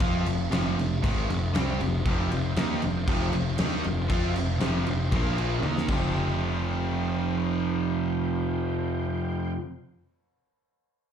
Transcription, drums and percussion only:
0.00 kick, crash
0.26 crash
0.52 snare, crash
0.79 crash
1.04 kick, crash
1.30 crash
1.55 snare, crash
1.81 crash
2.06 kick, crash
2.32 crash
2.56 snare, crash
2.82 crash
3.08 kick, crash
3.33 crash
3.58 snare, crash
3.84 crash
4.10 kick, crash
4.36 crash
4.60 snare, crash
4.87 crash
5.12 kick, crash
5.38 crash
5.63 high tom
5.78 snare
5.88 kick, crash

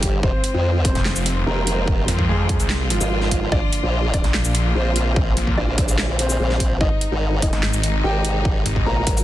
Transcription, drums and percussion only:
0.03 kick, closed hi-hat
0.23 kick
0.44 closed hi-hat
0.85 kick, closed hi-hat
0.95 snare, closed hi-hat
1.05 snare, clap
1.16 shaker
1.26 closed hi-hat
1.67 closed hi-hat
1.88 kick
2.08 closed hi-hat
2.19 kick
2.49 kick, closed hi-hat
2.60 closed hi-hat, shaker
2.70 snare, clap
2.90 closed hi-hat
3.01 shaker
3.21 snare
3.31 kick, closed hi-hat
3.52 kick
3.73 closed hi-hat
4.14 kick, closed hi-hat
4.24 snare, closed hi-hat
4.34 snare, clap
4.45 shaker
4.55 closed hi-hat
4.96 closed hi-hat
5.16 kick
5.37 closed hi-hat
5.47 kick
5.78 kick, closed hi-hat
5.88 closed hi-hat, shaker
5.98 snare, clap
6.19 closed hi-hat
6.29 shaker
6.50 snare
6.60 kick, closed hi-hat
6.81 kick
7.01 closed hi-hat
7.42 kick, closed hi-hat
7.53 snare, closed hi-hat
7.63 snare, clap
7.73 shaker
7.83 closed hi-hat
8.25 closed hi-hat
8.45 kick
8.66 closed hi-hat
8.76 kick
9.07 kick, closed hi-hat
9.17 closed hi-hat, shaker

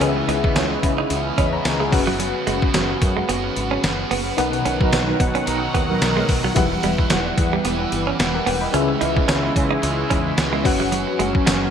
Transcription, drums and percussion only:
0.01 closed hi-hat
0.29 closed hi-hat
0.44 kick
0.56 snare, closed hi-hat, tambourine
0.83 kick, closed hi-hat
1.10 closed hi-hat
1.38 kick, closed hi-hat
1.65 snare, closed hi-hat, tambourine
1.92 kick, open hi-hat
2.20 closed hi-hat
2.47 closed hi-hat
2.62 kick
2.74 snare, closed hi-hat, tambourine
3.02 kick, closed hi-hat
3.29 closed hi-hat
3.56 closed hi-hat
3.84 snare, closed hi-hat, tambourine
4.11 open hi-hat
4.38 closed hi-hat
4.53 closed hi-hat
4.66 closed hi-hat
4.81 kick
4.93 snare, closed hi-hat, tambourine
5.20 kick, closed hi-hat
5.35 closed hi-hat
5.47 closed hi-hat
5.75 kick, closed hi-hat
6.02 snare, closed hi-hat, tambourine
6.29 kick, open hi-hat
6.56 kick, closed hi-hat
6.83 closed hi-hat
6.98 kick
7.10 snare, closed hi-hat, tambourine
7.38 kick, closed hi-hat
7.65 closed hi-hat
7.92 closed hi-hat
8.20 snare, closed hi-hat, tambourine
8.47 open hi-hat
8.74 closed hi-hat
9.01 closed hi-hat
9.17 kick
9.29 snare, closed hi-hat, tambourine
9.56 kick, closed hi-hat
9.83 closed hi-hat
10.11 kick, closed hi-hat
10.38 snare, closed hi-hat, tambourine
10.65 kick, open hi-hat
10.92 closed hi-hat
11.20 closed hi-hat
11.35 kick
11.47 snare, closed hi-hat, tambourine

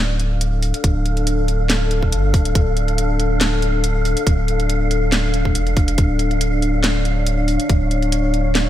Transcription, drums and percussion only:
0.20 closed hi-hat
0.41 closed hi-hat
0.63 open hi-hat
0.74 closed hi-hat
0.84 kick, closed hi-hat
1.06 closed hi-hat
1.17 closed hi-hat
1.27 closed hi-hat
1.48 closed hi-hat
1.70 snare, closed hi-hat
1.91 closed hi-hat
2.03 kick
2.12 closed hi-hat
2.34 kick, open hi-hat
2.45 closed hi-hat
2.55 kick, closed hi-hat
2.77 closed hi-hat
2.88 closed hi-hat
2.98 closed hi-hat
3.20 closed hi-hat
3.41 snare, closed hi-hat
3.62 closed hi-hat
3.84 closed hi-hat
4.05 open hi-hat
4.17 closed hi-hat
4.27 kick, closed hi-hat
4.48 closed hi-hat
4.60 closed hi-hat
4.70 closed hi-hat
4.91 closed hi-hat
5.12 snare, closed hi-hat
5.34 closed hi-hat
5.45 kick
5.55 closed hi-hat
5.67 closed hi-hat
5.77 kick, open hi-hat
5.88 closed hi-hat
5.98 kick, closed hi-hat
6.19 closed hi-hat
6.31 closed hi-hat
6.41 closed hi-hat
6.62 closed hi-hat
6.84 snare, closed hi-hat
7.05 closed hi-hat
7.27 closed hi-hat
7.48 open hi-hat
7.60 closed hi-hat
7.69 kick, closed hi-hat
7.91 closed hi-hat
8.02 closed hi-hat
8.12 closed hi-hat
8.34 closed hi-hat
8.55 snare, closed hi-hat

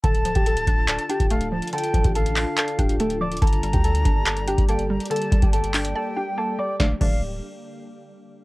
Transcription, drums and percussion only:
0.04 kick, closed hi-hat
0.15 closed hi-hat
0.25 closed hi-hat
0.35 kick, closed hi-hat
0.46 closed hi-hat
0.57 closed hi-hat
0.67 kick, closed hi-hat
0.88 clap, closed hi-hat
0.99 closed hi-hat
1.10 closed hi-hat
1.20 kick, closed hi-hat
1.30 closed hi-hat
1.41 closed hi-hat
1.62 closed hi-hat
1.68 closed hi-hat
1.73 closed hi-hat
1.78 closed hi-hat
1.84 closed hi-hat
1.94 kick, closed hi-hat
2.04 kick, closed hi-hat
2.15 closed hi-hat
2.26 closed hi-hat
2.36 clap, open hi-hat
2.57 clap, closed hi-hat
2.68 closed hi-hat
2.79 kick, closed hi-hat
2.89 closed hi-hat
3.00 closed hi-hat
3.10 closed hi-hat
3.32 closed hi-hat
3.37 closed hi-hat
3.42 kick, closed hi-hat
3.47 closed hi-hat
3.53 closed hi-hat
3.63 closed hi-hat
3.73 kick, closed hi-hat
3.84 closed hi-hat
3.95 closed hi-hat
4.05 kick, closed hi-hat
4.26 clap, closed hi-hat
4.37 closed hi-hat
4.48 closed hi-hat
4.58 kick, closed hi-hat
4.69 closed hi-hat
4.79 closed hi-hat
5.00 closed hi-hat
5.06 closed hi-hat
5.11 closed hi-hat
5.16 closed hi-hat
5.22 closed hi-hat
5.32 kick, closed hi-hat
5.42 kick, closed hi-hat
5.53 closed hi-hat
5.64 closed hi-hat
5.74 clap, closed hi-hat, open hi-hat
5.85 closed hi-hat
6.80 kick, snare
7.01 kick, crash

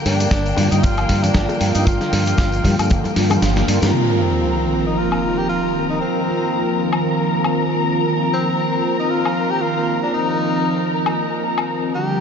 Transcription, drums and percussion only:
0.06 open hi-hat
0.20 closed hi-hat, tambourine, high bongo
0.31 kick, snare, closed hi-hat, tambourine
0.46 closed hi-hat, tambourine
0.57 open hi-hat, high bongo, high conga
0.71 closed hi-hat, tambourine
0.83 kick, closed hi-hat, tambourine
0.97 closed hi-hat, tambourine, high woodblock
1.09 kick, open hi-hat, high bongo
1.23 closed hi-hat, tambourine, low conga
1.34 kick, snare, closed hi-hat, tambourine
1.49 closed hi-hat, tambourine, high bongo
1.61 open hi-hat
1.75 closed hi-hat, tambourine
1.87 kick, closed hi-hat, tambourine
2.01 snare, closed hi-hat, tambourine, high bongo
2.13 open hi-hat
2.26 closed hi-hat, tambourine
2.37 kick, snare, closed hi-hat, tambourine, high bongo, high conga
2.52 closed hi-hat, tambourine
2.64 kick, open hi-hat, high conga
2.79 closed hi-hat, tambourine, high woodblock
2.90 kick, closed hi-hat, tambourine, high bongo
3.04 closed hi-hat, tambourine, high conga
3.16 snare, open hi-hat
3.30 closed hi-hat, tambourine, high bongo, high conga, low conga, high woodblock
3.42 snare, closed hi-hat, tambourine
3.56 snare, closed hi-hat, tambourine
3.68 open hi-hat
3.82 snare, closed hi-hat, tambourine, high bongo
5.12 high woodblock
6.93 high woodblock
7.44 high woodblock
9.26 high woodblock
11.06 high woodblock
11.58 high woodblock

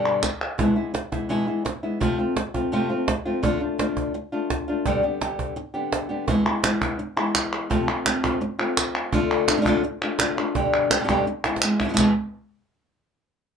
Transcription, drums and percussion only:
0.05 cajon slap
0.23 cajon bass, cajon slap, clap
0.41 clap
0.59 cajon bass
0.95 cajon slap
1.12 cajon bass
1.48 cajon slap
1.66 cajon slap
2.01 cajon bass
2.37 cajon slap
2.54 cajon bass
3.08 cajon bass, cajon slap
3.43 cajon bass
3.61 cajon slap
3.79 cajon slap
3.97 cajon bass
4.15 cajon slap
4.50 cajon bass, cajon slap
4.86 cajon bass
5.04 cajon slap
5.21 cajon slap
5.39 cajon bass
5.57 cajon slap
5.75 cajon slap
5.92 cajon slap
6.28 cajon bass
6.46 cajon slap
6.64 cajon slap, clap
6.81 cajon bass, clap
6.99 cajon slap
7.35 cajon slap, clap
7.71 cajon bass
8.06 cajon slap, clap
8.24 cajon bass, clap
8.77 cajon slap, clap
8.95 clap
9.13 cajon bass
9.48 cajon slap, clap
9.65 cajon bass, clap
10.19 cajon slap, clap
10.38 clap
10.55 cajon bass
10.91 cajon slap, clap
11.09 cajon bass, clap
11.44 cajon slap
11.56 cajon slap
11.62 clap
11.80 cajon bass, clap
11.97 cajon bass, clap

